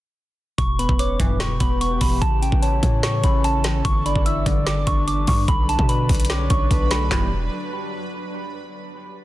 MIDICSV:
0, 0, Header, 1, 8, 480
1, 0, Start_track
1, 0, Tempo, 408163
1, 687, Time_signature, 4, 2, 24, 8
1, 10870, End_track
2, 0, Start_track
2, 0, Title_t, "Synth bell"
2, 0, Program_c, 0, 98
2, 683, Note_on_c, 0, 85, 100
2, 870, Note_off_c, 0, 85, 0
2, 928, Note_on_c, 0, 83, 75
2, 1113, Note_off_c, 0, 83, 0
2, 1168, Note_on_c, 0, 86, 84
2, 1619, Note_off_c, 0, 86, 0
2, 1644, Note_on_c, 0, 85, 86
2, 1831, Note_off_c, 0, 85, 0
2, 1887, Note_on_c, 0, 83, 80
2, 2072, Note_off_c, 0, 83, 0
2, 2128, Note_on_c, 0, 85, 87
2, 2313, Note_off_c, 0, 85, 0
2, 2365, Note_on_c, 0, 83, 80
2, 2551, Note_off_c, 0, 83, 0
2, 2604, Note_on_c, 0, 81, 116
2, 2791, Note_off_c, 0, 81, 0
2, 2847, Note_on_c, 0, 79, 76
2, 3033, Note_off_c, 0, 79, 0
2, 3084, Note_on_c, 0, 81, 84
2, 3536, Note_off_c, 0, 81, 0
2, 3565, Note_on_c, 0, 85, 88
2, 3752, Note_off_c, 0, 85, 0
2, 3811, Note_on_c, 0, 83, 73
2, 3995, Note_off_c, 0, 83, 0
2, 4049, Note_on_c, 0, 81, 93
2, 4499, Note_off_c, 0, 81, 0
2, 4525, Note_on_c, 0, 85, 111
2, 4712, Note_off_c, 0, 85, 0
2, 4770, Note_on_c, 0, 83, 86
2, 4954, Note_off_c, 0, 83, 0
2, 5006, Note_on_c, 0, 88, 79
2, 5458, Note_off_c, 0, 88, 0
2, 5483, Note_on_c, 0, 86, 95
2, 5670, Note_off_c, 0, 86, 0
2, 5725, Note_on_c, 0, 85, 90
2, 5911, Note_off_c, 0, 85, 0
2, 5966, Note_on_c, 0, 86, 90
2, 6152, Note_off_c, 0, 86, 0
2, 6210, Note_on_c, 0, 85, 83
2, 6394, Note_off_c, 0, 85, 0
2, 6448, Note_on_c, 0, 83, 104
2, 6633, Note_off_c, 0, 83, 0
2, 6689, Note_on_c, 0, 81, 80
2, 6874, Note_off_c, 0, 81, 0
2, 6925, Note_on_c, 0, 83, 90
2, 7377, Note_off_c, 0, 83, 0
2, 7408, Note_on_c, 0, 86, 82
2, 7593, Note_off_c, 0, 86, 0
2, 7646, Note_on_c, 0, 85, 82
2, 8097, Note_off_c, 0, 85, 0
2, 8125, Note_on_c, 0, 83, 77
2, 8312, Note_off_c, 0, 83, 0
2, 8367, Note_on_c, 0, 83, 89
2, 8590, Note_off_c, 0, 83, 0
2, 10870, End_track
3, 0, Start_track
3, 0, Title_t, "Soft synth lead"
3, 0, Program_c, 1, 80
3, 928, Note_on_c, 1, 71, 91
3, 1155, Note_off_c, 1, 71, 0
3, 1166, Note_on_c, 1, 73, 78
3, 1395, Note_off_c, 1, 73, 0
3, 1403, Note_on_c, 1, 71, 87
3, 2558, Note_off_c, 1, 71, 0
3, 3565, Note_on_c, 1, 73, 94
3, 4479, Note_off_c, 1, 73, 0
3, 4769, Note_on_c, 1, 74, 90
3, 4996, Note_off_c, 1, 74, 0
3, 5009, Note_on_c, 1, 76, 88
3, 5236, Note_off_c, 1, 76, 0
3, 5250, Note_on_c, 1, 74, 95
3, 6401, Note_off_c, 1, 74, 0
3, 7406, Note_on_c, 1, 73, 92
3, 7858, Note_off_c, 1, 73, 0
3, 7887, Note_on_c, 1, 71, 85
3, 8115, Note_off_c, 1, 71, 0
3, 8127, Note_on_c, 1, 69, 85
3, 8355, Note_off_c, 1, 69, 0
3, 8368, Note_on_c, 1, 67, 90
3, 8591, Note_off_c, 1, 67, 0
3, 10870, End_track
4, 0, Start_track
4, 0, Title_t, "Ambient pad"
4, 0, Program_c, 2, 92
4, 687, Note_on_c, 2, 59, 73
4, 687, Note_on_c, 2, 67, 87
4, 688, Note_on_c, 2, 52, 82
4, 2588, Note_off_c, 2, 59, 0
4, 2588, Note_off_c, 2, 67, 0
4, 2607, Note_on_c, 2, 61, 75
4, 2608, Note_on_c, 2, 69, 90
4, 4489, Note_off_c, 2, 52, 0
4, 4507, Note_off_c, 2, 61, 0
4, 4508, Note_off_c, 2, 69, 0
4, 4524, Note_on_c, 2, 55, 80
4, 4524, Note_on_c, 2, 71, 86
4, 4525, Note_on_c, 2, 62, 74
4, 6426, Note_off_c, 2, 55, 0
4, 6426, Note_off_c, 2, 71, 0
4, 6427, Note_off_c, 2, 62, 0
4, 6446, Note_on_c, 2, 62, 70
4, 6446, Note_on_c, 2, 71, 87
4, 6447, Note_on_c, 2, 54, 79
4, 8347, Note_off_c, 2, 54, 0
4, 8347, Note_off_c, 2, 62, 0
4, 8347, Note_off_c, 2, 71, 0
4, 10870, End_track
5, 0, Start_track
5, 0, Title_t, "Tine electric piano"
5, 0, Program_c, 3, 4
5, 685, Note_on_c, 3, 47, 93
5, 927, Note_on_c, 3, 59, 93
5, 939, Control_c, 3, 64, 127
5, 1166, Note_on_c, 3, 71, 98
5, 1392, Note_off_c, 3, 71, 0
5, 1406, Note_on_c, 3, 71, 93
5, 1633, Note_off_c, 3, 47, 0
5, 1647, Note_on_c, 3, 47, 94
5, 1870, Note_off_c, 3, 59, 0
5, 1884, Note_on_c, 3, 59, 94
5, 2109, Note_off_c, 3, 59, 0
5, 2123, Note_on_c, 3, 59, 98
5, 2363, Note_on_c, 3, 52, 81
5, 2605, Note_off_c, 3, 52, 0
5, 2605, Note_off_c, 3, 59, 0
5, 2605, Note_on_c, 3, 49, 94
5, 2606, Note_off_c, 3, 71, 0
5, 2607, Note_off_c, 3, 47, 0
5, 2620, Control_c, 3, 64, 0
5, 2836, Control_c, 3, 64, 127
5, 2847, Note_on_c, 3, 61, 86
5, 3085, Note_on_c, 3, 73, 96
5, 3311, Note_off_c, 3, 73, 0
5, 3325, Note_on_c, 3, 73, 92
5, 3551, Note_off_c, 3, 49, 0
5, 3565, Note_on_c, 3, 49, 93
5, 3792, Note_off_c, 3, 61, 0
5, 3806, Note_on_c, 3, 61, 87
5, 4033, Note_off_c, 3, 61, 0
5, 4047, Note_on_c, 3, 61, 85
5, 4286, Note_on_c, 3, 52, 81
5, 4526, Note_off_c, 3, 49, 0
5, 4526, Note_off_c, 3, 52, 0
5, 4526, Note_off_c, 3, 73, 0
5, 4527, Note_off_c, 3, 61, 0
5, 4527, Note_on_c, 3, 50, 100
5, 4542, Control_c, 3, 64, 0
5, 4730, Control_c, 3, 64, 127
5, 4768, Note_on_c, 3, 62, 86
5, 5007, Note_on_c, 3, 74, 90
5, 5231, Note_off_c, 3, 74, 0
5, 5245, Note_on_c, 3, 74, 85
5, 5471, Note_off_c, 3, 50, 0
5, 5485, Note_on_c, 3, 50, 91
5, 5712, Note_off_c, 3, 62, 0
5, 5727, Note_on_c, 3, 62, 86
5, 5951, Note_off_c, 3, 62, 0
5, 5965, Note_on_c, 3, 62, 93
5, 6204, Note_on_c, 3, 55, 78
5, 6432, Note_off_c, 3, 50, 0
5, 6445, Note_off_c, 3, 55, 0
5, 6446, Note_off_c, 3, 62, 0
5, 6446, Note_off_c, 3, 74, 0
5, 6446, Note_on_c, 3, 50, 101
5, 6460, Control_c, 3, 64, 0
5, 6668, Control_c, 3, 64, 127
5, 6687, Note_on_c, 3, 62, 89
5, 6924, Note_on_c, 3, 71, 90
5, 7392, Note_off_c, 3, 50, 0
5, 7407, Note_on_c, 3, 50, 86
5, 7632, Note_off_c, 3, 62, 0
5, 7647, Note_on_c, 3, 62, 86
5, 7873, Note_off_c, 3, 62, 0
5, 7887, Note_on_c, 3, 62, 92
5, 8125, Note_on_c, 3, 54, 82
5, 8126, Note_off_c, 3, 71, 0
5, 8365, Note_on_c, 3, 55, 77
5, 8366, Note_off_c, 3, 54, 0
5, 8366, Note_on_c, 3, 52, 86
5, 8366, Note_on_c, 3, 64, 96
5, 8367, Note_off_c, 3, 50, 0
5, 8367, Note_off_c, 3, 62, 0
5, 8367, Note_on_c, 3, 59, 78
5, 8380, Control_c, 3, 64, 0
5, 8589, Note_off_c, 3, 55, 0
5, 8590, Note_off_c, 3, 52, 0
5, 8590, Note_off_c, 3, 59, 0
5, 8590, Note_off_c, 3, 64, 0
5, 10870, End_track
6, 0, Start_track
6, 0, Title_t, "Analog polysynth"
6, 0, Program_c, 4, 90
6, 1406, Note_on_c, 4, 43, 100
6, 1407, Note_on_c, 4, 35, 95
6, 1407, Note_on_c, 4, 52, 112
6, 1748, Note_off_c, 4, 43, 0
6, 1749, Note_off_c, 4, 35, 0
6, 1749, Note_off_c, 4, 52, 0
6, 5246, Note_on_c, 4, 35, 99
6, 5246, Note_on_c, 4, 43, 94
6, 5247, Note_on_c, 4, 50, 112
6, 5588, Note_off_c, 4, 43, 0
6, 5589, Note_off_c, 4, 35, 0
6, 5589, Note_off_c, 4, 50, 0
6, 8366, Note_on_c, 4, 35, 92
6, 8366, Note_on_c, 4, 43, 93
6, 8366, Note_on_c, 4, 52, 102
6, 8590, Note_off_c, 4, 35, 0
6, 8590, Note_off_c, 4, 43, 0
6, 8590, Note_off_c, 4, 52, 0
6, 10870, End_track
7, 0, Start_track
7, 0, Title_t, "808-style bass"
7, 0, Program_c, 5, 38
7, 687, Note_on_c, 5, 28, 106
7, 1032, Note_off_c, 5, 28, 0
7, 1046, Note_on_c, 5, 28, 97
7, 1392, Note_off_c, 5, 28, 0
7, 1406, Note_on_c, 5, 28, 107
7, 1867, Note_off_c, 5, 28, 0
7, 1886, Note_on_c, 5, 28, 106
7, 2347, Note_off_c, 5, 28, 0
7, 2366, Note_on_c, 5, 28, 109
7, 2597, Note_off_c, 5, 28, 0
7, 2606, Note_on_c, 5, 33, 106
7, 2952, Note_off_c, 5, 33, 0
7, 2967, Note_on_c, 5, 33, 101
7, 3312, Note_off_c, 5, 33, 0
7, 3327, Note_on_c, 5, 45, 108
7, 3788, Note_off_c, 5, 45, 0
7, 3807, Note_on_c, 5, 33, 104
7, 4498, Note_off_c, 5, 33, 0
7, 4526, Note_on_c, 5, 31, 110
7, 4872, Note_off_c, 5, 31, 0
7, 4887, Note_on_c, 5, 31, 100
7, 5232, Note_off_c, 5, 31, 0
7, 5247, Note_on_c, 5, 31, 105
7, 5707, Note_off_c, 5, 31, 0
7, 5727, Note_on_c, 5, 31, 107
7, 6188, Note_off_c, 5, 31, 0
7, 6207, Note_on_c, 5, 43, 106
7, 6437, Note_off_c, 5, 43, 0
7, 6446, Note_on_c, 5, 35, 109
7, 6792, Note_off_c, 5, 35, 0
7, 6806, Note_on_c, 5, 47, 100
7, 7152, Note_off_c, 5, 47, 0
7, 7166, Note_on_c, 5, 35, 104
7, 7627, Note_off_c, 5, 35, 0
7, 7647, Note_on_c, 5, 35, 109
7, 7877, Note_off_c, 5, 35, 0
7, 7888, Note_on_c, 5, 35, 105
7, 8348, Note_off_c, 5, 35, 0
7, 8367, Note_on_c, 5, 28, 109
7, 8813, Note_off_c, 5, 28, 0
7, 10870, End_track
8, 0, Start_track
8, 0, Title_t, "Drums"
8, 686, Note_on_c, 9, 36, 118
8, 687, Note_on_c, 9, 42, 74
8, 804, Note_off_c, 9, 36, 0
8, 805, Note_off_c, 9, 42, 0
8, 932, Note_on_c, 9, 42, 68
8, 1047, Note_on_c, 9, 36, 89
8, 1050, Note_off_c, 9, 42, 0
8, 1164, Note_off_c, 9, 36, 0
8, 1168, Note_on_c, 9, 42, 82
8, 1285, Note_off_c, 9, 42, 0
8, 1407, Note_on_c, 9, 36, 97
8, 1407, Note_on_c, 9, 42, 78
8, 1524, Note_off_c, 9, 36, 0
8, 1525, Note_off_c, 9, 42, 0
8, 1647, Note_on_c, 9, 38, 113
8, 1652, Note_on_c, 9, 42, 79
8, 1765, Note_off_c, 9, 38, 0
8, 1770, Note_off_c, 9, 42, 0
8, 1885, Note_on_c, 9, 42, 69
8, 1887, Note_on_c, 9, 36, 100
8, 2003, Note_off_c, 9, 42, 0
8, 2004, Note_off_c, 9, 36, 0
8, 2130, Note_on_c, 9, 42, 72
8, 2247, Note_off_c, 9, 42, 0
8, 2362, Note_on_c, 9, 46, 54
8, 2366, Note_on_c, 9, 36, 96
8, 2480, Note_off_c, 9, 46, 0
8, 2484, Note_off_c, 9, 36, 0
8, 2606, Note_on_c, 9, 36, 120
8, 2607, Note_on_c, 9, 42, 73
8, 2724, Note_off_c, 9, 36, 0
8, 2725, Note_off_c, 9, 42, 0
8, 2852, Note_on_c, 9, 42, 66
8, 2966, Note_on_c, 9, 36, 92
8, 2970, Note_off_c, 9, 42, 0
8, 3084, Note_off_c, 9, 36, 0
8, 3088, Note_on_c, 9, 42, 86
8, 3206, Note_off_c, 9, 42, 0
8, 3326, Note_on_c, 9, 36, 98
8, 3327, Note_on_c, 9, 42, 76
8, 3444, Note_off_c, 9, 36, 0
8, 3445, Note_off_c, 9, 42, 0
8, 3566, Note_on_c, 9, 38, 110
8, 3572, Note_on_c, 9, 42, 82
8, 3684, Note_off_c, 9, 38, 0
8, 3689, Note_off_c, 9, 42, 0
8, 3804, Note_on_c, 9, 42, 69
8, 3807, Note_on_c, 9, 36, 97
8, 3922, Note_off_c, 9, 42, 0
8, 3924, Note_off_c, 9, 36, 0
8, 4049, Note_on_c, 9, 42, 70
8, 4167, Note_off_c, 9, 42, 0
8, 4282, Note_on_c, 9, 42, 75
8, 4287, Note_on_c, 9, 38, 99
8, 4400, Note_off_c, 9, 42, 0
8, 4404, Note_off_c, 9, 38, 0
8, 4526, Note_on_c, 9, 36, 121
8, 4527, Note_on_c, 9, 42, 75
8, 4644, Note_off_c, 9, 36, 0
8, 4644, Note_off_c, 9, 42, 0
8, 4773, Note_on_c, 9, 42, 67
8, 4887, Note_on_c, 9, 36, 89
8, 4890, Note_off_c, 9, 42, 0
8, 5004, Note_off_c, 9, 36, 0
8, 5008, Note_on_c, 9, 42, 85
8, 5126, Note_off_c, 9, 42, 0
8, 5247, Note_on_c, 9, 36, 100
8, 5248, Note_on_c, 9, 42, 76
8, 5364, Note_off_c, 9, 36, 0
8, 5365, Note_off_c, 9, 42, 0
8, 5487, Note_on_c, 9, 38, 109
8, 5493, Note_on_c, 9, 42, 82
8, 5605, Note_off_c, 9, 38, 0
8, 5610, Note_off_c, 9, 42, 0
8, 5725, Note_on_c, 9, 42, 69
8, 5727, Note_on_c, 9, 36, 97
8, 5843, Note_off_c, 9, 42, 0
8, 5845, Note_off_c, 9, 36, 0
8, 5969, Note_on_c, 9, 42, 70
8, 6087, Note_off_c, 9, 42, 0
8, 6202, Note_on_c, 9, 46, 53
8, 6206, Note_on_c, 9, 36, 97
8, 6319, Note_off_c, 9, 46, 0
8, 6324, Note_off_c, 9, 36, 0
8, 6446, Note_on_c, 9, 36, 120
8, 6447, Note_on_c, 9, 42, 74
8, 6564, Note_off_c, 9, 36, 0
8, 6565, Note_off_c, 9, 42, 0
8, 6692, Note_on_c, 9, 42, 67
8, 6806, Note_on_c, 9, 36, 92
8, 6809, Note_off_c, 9, 42, 0
8, 6924, Note_off_c, 9, 36, 0
8, 6927, Note_on_c, 9, 42, 86
8, 7045, Note_off_c, 9, 42, 0
8, 7166, Note_on_c, 9, 36, 97
8, 7166, Note_on_c, 9, 42, 49
8, 7166, Note_on_c, 9, 46, 62
8, 7226, Note_off_c, 9, 42, 0
8, 7226, Note_on_c, 9, 42, 60
8, 7284, Note_off_c, 9, 36, 0
8, 7284, Note_off_c, 9, 46, 0
8, 7287, Note_off_c, 9, 42, 0
8, 7287, Note_on_c, 9, 42, 74
8, 7346, Note_off_c, 9, 42, 0
8, 7346, Note_on_c, 9, 42, 84
8, 7406, Note_on_c, 9, 38, 109
8, 7464, Note_off_c, 9, 42, 0
8, 7524, Note_off_c, 9, 38, 0
8, 7645, Note_on_c, 9, 42, 72
8, 7647, Note_on_c, 9, 36, 98
8, 7762, Note_off_c, 9, 42, 0
8, 7765, Note_off_c, 9, 36, 0
8, 7888, Note_on_c, 9, 36, 98
8, 7889, Note_on_c, 9, 42, 69
8, 8005, Note_off_c, 9, 36, 0
8, 8007, Note_off_c, 9, 42, 0
8, 8123, Note_on_c, 9, 42, 72
8, 8127, Note_on_c, 9, 38, 101
8, 8241, Note_off_c, 9, 42, 0
8, 8245, Note_off_c, 9, 38, 0
8, 8367, Note_on_c, 9, 36, 108
8, 8368, Note_on_c, 9, 38, 108
8, 8368, Note_on_c, 9, 39, 92
8, 8485, Note_off_c, 9, 36, 0
8, 8485, Note_off_c, 9, 38, 0
8, 8485, Note_off_c, 9, 39, 0
8, 10870, End_track
0, 0, End_of_file